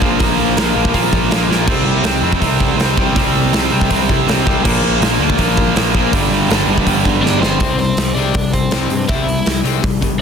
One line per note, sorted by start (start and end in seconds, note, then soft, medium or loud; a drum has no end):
0.01 0.17 A#1 medium
0.01 0.19 A#2 medium
0.01 0.20 F3 loud
0.01 0.21 A#3 loud
0.01 kick medium
0.20 0.36 A#1 loud
0.20 0.56 A#2 loud
0.20 0.57 F3 loud
0.20 0.57 A#3 loud
0.20 kick loud
0.20 open hi-hat medium
0.39 0.54 A#1 medium
0.57 0.73 A#1 medium
0.57 0.74 A#2 medium
0.57 0.75 F3 medium
0.57 0.75 A#3 medium
0.57 snare loud
0.57 open hi-hat medium
0.76 0.91 A#1 medium
0.76 0.93 A#2 medium
0.76 0.93 F3 medium
0.76 0.94 A#3 medium
0.85 kick medium
0.94 1.10 A#1 medium
0.94 1.29 A#2 medium
0.94 1.30 F3 loud
0.94 1.31 A#3 loud
0.94 kick loud
0.94 open hi-hat medium
1.12 1.28 A#1 medium
1.12 kick medium
1.29 1.46 A#1 medium
1.29 1.48 A#2 medium
1.29 1.49 F3 medium
1.29 1.50 A#3 medium
1.29 snare loud
1.29 open hi-hat medium
1.49 1.65 A#1 medium
1.49 1.67 A#2 medium
1.49 1.67 F3 loud
1.49 1.67 A#3 loud
1.49 snare medium
1.67 1.84 C2 medium
1.67 2.04 C3 loud
1.67 2.05 G3 loud
1.67 2.05 C4 loud
1.67 kick loud
1.67 crash loud
1.85 2.02 C2 medium
2.04 2.20 C2 medium
2.04 2.22 C3 medium
2.04 2.22 G3 medium
2.04 2.23 C4 medium
2.04 snare loud
2.04 open hi-hat medium
2.22 2.38 F2 medium
2.22 2.39 C3 medium
2.22 2.40 G3 medium
2.22 2.40 C4 medium
2.33 kick medium
2.41 2.73 C2 medium
2.41 2.77 C3 medium
2.41 2.78 G3 loud
2.41 2.78 C4 loud
2.41 kick loud
2.41 open hi-hat medium
2.60 kick medium
2.77 2.94 C2 medium
2.77 2.96 C3 medium
2.77 2.97 G3 medium
2.77 2.97 C4 loud
2.77 snare loud
2.77 open hi-hat medium
2.97 3.13 C2 medium
2.97 3.15 C3 medium
2.97 3.15 G3 loud
2.97 3.16 C4 loud
2.97 kick loud
3.16 3.32 C2 medium
3.16 3.52 C3 medium
3.16 3.53 G3 loud
3.16 3.53 C4 loud
3.16 kick loud
3.16 open hi-hat medium
3.35 3.51 C2 medium
3.53 3.69 C2 medium
3.53 3.71 C3 medium
3.53 3.71 G3 medium
3.53 3.71 C4 loud
3.53 snare loud
3.53 open hi-hat medium
3.72 3.88 C2 medium
3.72 3.89 C3 medium
3.72 3.90 G3 medium
3.72 3.90 C4 medium
3.81 kick medium
3.90 4.06 C2 medium
3.90 4.27 C3 medium
3.90 4.27 G3 loud
3.90 4.28 C4 loud
3.90 kick loud
3.90 open hi-hat medium
4.09 4.25 C2 medium
4.09 kick medium
4.28 4.44 C2 loud
4.28 4.45 C3 loud
4.28 4.45 G3 loud
4.28 4.46 C4 loud
4.28 snare loud
4.28 open hi-hat medium
4.46 4.62 C2 medium
4.46 4.63 C3 loud
4.46 4.64 G3 medium
4.46 4.64 C4 loud
4.46 kick loud
4.64 4.80 A#1 loud
4.64 5.01 A#2 medium
4.64 5.02 F3 loud
4.64 5.02 A#3 loud
4.64 kick loud
4.64 crash loud
4.83 4.99 A#1 medium
5.00 5.17 A#1 medium
5.00 5.19 A#2 medium
5.00 5.19 F3 medium
5.00 5.20 A#3 loud
5.00 snare loud
5.00 open hi-hat medium
5.19 5.35 D2 medium
5.19 5.37 A#2 medium
5.19 5.37 F3 medium
5.19 5.38 A#3 medium
5.30 kick medium
5.38 5.70 A#1 medium
5.38 5.75 A#2 loud
5.38 5.75 F3 medium
5.38 5.75 A#3 loud
5.38 kick medium
5.38 open hi-hat medium
5.57 kick medium
5.76 5.91 A#1 medium
5.76 5.93 A#2 medium
5.76 5.94 F3 loud
5.76 5.94 A#3 loud
5.76 snare loud
5.76 open hi-hat medium
5.94 6.10 A#1 medium
5.94 6.11 A#2 medium
5.94 6.12 F3 loud
5.94 6.12 A#3 loud
5.94 kick medium
6.13 6.29 G1 loud
6.13 6.49 G2 medium
6.13 6.50 D3 loud
6.13 6.50 G3 loud
6.13 kick loud
6.13 open hi-hat medium
6.30 6.46 G1 medium
6.49 6.65 G1 medium
6.49 6.68 G2 medium
6.49 6.68 D3 medium
6.49 6.69 G3 medium
6.49 snare loud
6.49 open hi-hat medium
6.67 6.83 G1 medium
6.67 6.85 G2 medium
6.67 6.86 D3 medium
6.67 6.86 G3 medium
6.78 kick medium
6.86 7.03 G1 medium
6.86 7.22 G2 loud
6.86 7.23 D3 medium
6.86 7.24 G3 loud
6.86 kick loud
6.86 open hi-hat medium
7.05 7.21 G1 medium
7.05 kick medium
7.22 7.39 G1 medium
7.22 7.41 G2 medium
7.22 7.42 D3 loud
7.22 7.42 G3 medium
7.22 7.40 D4 medium
7.22 7.41 D5 medium
7.22 snare medium
7.39 7.57 G1 medium
7.39 7.60 G2 medium
7.39 7.75 C4 medium
7.39 7.78 C5 medium
7.43 7.60 D3 loud
7.43 7.59 G3 medium
7.43 snare loud
7.60 7.90 C2 medium
7.60 7.77 C3 medium
7.60 7.78 G3 medium
7.60 7.78 C4 loud
7.60 kick loud
7.60 open hi-hat medium
7.78 7.96 C3 medium
7.78 7.96 G3 medium
7.78 8.13 C4 medium
7.78 8.15 C5 medium
7.78 open hi-hat soft
7.97 8.12 C2 medium
7.97 8.14 C3 medium
7.97 8.14 G3 medium
7.97 snare loud
7.97 open hi-hat medium
8.15 8.30 C2 medium
8.15 8.33 C3 medium
8.15 8.34 G3 medium
8.15 8.34 C4 loud
8.15 8.50 D4 medium
8.15 8.50 D5 medium
8.15 open hi-hat medium
8.34 8.63 C2 medium
8.34 8.51 C3 medium
8.34 8.51 G3 medium
8.34 kick loud
8.34 open hi-hat medium
8.53 8.70 C3 medium
8.53 8.70 G3 medium
8.53 9.05 C4 medium
8.53 9.05 C5 medium
8.53 kick medium
8.53 open hi-hat medium
8.71 8.86 C2 medium
8.71 8.88 C3 medium
8.71 8.89 G3 medium
8.71 8.90 C4 loud
8.71 snare loud
8.71 open hi-hat medium
8.89 9.04 G2 medium
8.89 9.06 C3 medium
8.89 9.07 G3 medium
8.89 open hi-hat medium
9.07 9.38 C2 medium
9.07 9.25 C3 medium
9.07 9.26 G3 medium
9.07 9.26 C4 medium
9.07 9.61 E4 medium
9.07 9.61 E5 loud
9.07 kick loud
9.07 open hi-hat medium
9.27 9.44 C3 medium
9.27 9.44 G3 medium
9.27 open hi-hat medium
9.46 9.61 C2 medium
9.46 9.62 C3 medium
9.46 9.63 G3 medium
9.46 snare loud
9.46 open hi-hat medium
9.64 9.79 C2 medium
9.64 9.80 C3 medium
9.64 9.81 G3 medium
9.64 9.82 C4 medium
9.64 open hi-hat medium
9.81 10.12 C2 medium
9.81 9.99 C3 medium
9.81 9.99 G3 medium
9.81 kick loud
9.81 open hi-hat medium
10.01 10.18 C3 medium
10.01 10.18 G3 medium
10.01 kick medium
10.01 open hi-hat medium